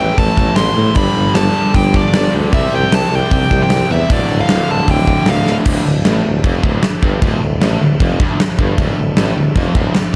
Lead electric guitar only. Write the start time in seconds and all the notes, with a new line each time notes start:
0.00 G5
0.18 A5
0.37 A5
0.56 C6
0.96 B5
1.35 A5
1.74 G5
1.96 D5
2.54 E5
2.75 G5
2.94 A5
3.15 G5
3.63 G5
3.92 E5
4.12 D5
4.41 F5
4.71 A5
4.91 G5
5.29 F5